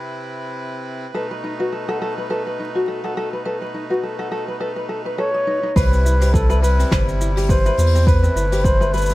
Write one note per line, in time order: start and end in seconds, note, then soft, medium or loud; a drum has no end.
0.00 1.11 C3 medium
0.00 1.11 C4 medium
0.00 1.11 E4 medium
0.00 5.72 B4 medium
1.14 5.72 B2 medium
1.14 5.72 A3 medium
1.14 5.72 D#4 medium
1.14 1.29 A4 medium
1.14 1.24 B4 medium
1.31 1.42 B4 medium
1.44 1.53 D#4 medium
1.60 1.71 F#4 medium
1.60 1.67 B4 medium
1.72 1.87 A4 medium
1.89 2.00 A4 medium
1.89 2.01 F#5 medium
2.02 2.16 A4 medium
2.18 2.29 B4 medium
2.30 2.45 A4 medium
2.30 2.39 B4 medium
2.47 2.58 B4 medium
2.60 2.68 D#4 medium
2.75 2.82 F#4 medium
2.75 2.87 F#4 medium
2.88 3.02 A4 medium
3.04 3.16 A4 medium
3.04 3.16 F#5 medium
3.17 3.31 A4 medium
3.33 3.44 B4 medium
3.46 3.60 A4 medium
3.46 3.55 B4 medium
3.62 3.73 B4 medium
3.74 3.83 D#4 medium
3.90 4.02 F#4 medium
3.90 3.98 B4 medium
4.03 4.18 A4 medium
4.19 4.31 A4 medium
4.19 4.31 F#5 medium
4.32 4.46 A4 medium
4.48 4.60 B4 medium
4.60 4.75 A4 medium
4.60 4.70 B4 medium
4.76 4.88 B4 medium
4.89 5.04 A4 medium
5.05 5.17 B4 medium
5.05 5.13 B4 medium
5.18 5.34 A4 medium
5.18 5.34 B4 loud
5.18 5.78 C#5 loud
5.34 5.46 D#5 medium
5.47 5.62 D#4 medium
5.47 5.63 B4 medium
5.63 5.75 D#4 medium
5.76 6.84 C2 loud
5.76 9.14 C3 medium
5.76 9.14 G3 medium
5.76 9.14 E4 medium
5.76 5.91 B4 medium
5.76 6.35 B4 loud
5.76 5.85 C5 loud
5.76 kick loud
5.76 open hi-hat medium
5.76 cabasa medium
5.92 6.04 C4 medium
5.92 cabasa soft
6.05 6.14 E4 medium
6.05 cabasa medium
6.21 6.33 G4 medium
6.21 6.28 C5 medium
6.21 open hi-hat medium
6.21 cabasa medium
6.34 6.62 A4 medium
6.34 6.49 B4 medium
6.34 kick loud
6.34 cabasa medium
6.50 6.61 B4 loud
6.50 6.62 E5 medium
6.50 cabasa soft
6.62 6.77 B4 loud
6.62 7.16 B4 medium
6.62 open hi-hat soft
6.62 cabasa medium
6.79 6.90 C4 medium
6.79 open hi-hat medium
6.79 cabasa soft
6.91 7.71 G1 medium
6.91 7.06 B4 medium
6.91 7.01 C5 loud
6.91 kick loud
6.91 snare medium
6.91 open hi-hat medium
6.91 cabasa medium
7.08 7.19 C4 medium
7.08 cabasa soft
7.21 7.30 E4 medium
7.21 cabasa medium
7.36 7.44 G4 medium
7.36 7.48 G4 medium
7.36 open hi-hat medium
7.36 cabasa soft
7.49 7.64 B4 medium
7.49 8.08 C5 loud
7.49 kick loud
7.49 open hi-hat medium
7.49 cabasa medium
7.65 7.77 B4 loud
7.65 7.77 E5 medium
7.65 cabasa soft
7.77 8.29 E2 loud
7.77 7.93 B4 loud
7.77 open hi-hat medium
7.77 cabasa medium
7.87 open hi-hat medium
7.94 8.06 C4 medium
7.94 open hi-hat medium
7.94 cabasa soft
8.06 9.14 A3 medium
8.06 8.66 B4 loud
8.06 8.22 B4 medium
8.06 8.16 C5 loud
8.06 kick loud
8.06 open hi-hat medium
8.06 cabasa medium
8.23 8.35 C4 medium
8.23 cabasa soft
8.36 9.14 G1 medium
8.36 8.45 E4 medium
8.36 cabasa medium
8.52 8.64 G4 medium
8.52 8.59 C5 medium
8.52 open hi-hat medium
8.52 cabasa medium
8.64 8.79 B4 medium
8.64 8.94 C5 loud
8.64 kick loud
8.64 cabasa medium
8.81 8.92 B4 loud
8.81 8.93 E5 medium
8.81 cabasa soft
8.93 9.14 B4 loud
8.93 9.08 B4 loud
8.93 open hi-hat medium
8.93 cabasa soft
8.97 cabasa soft
9.02 cabasa medium
9.06 cabasa medium
9.09 9.14 C4 medium
9.09 open hi-hat medium
9.09 cabasa soft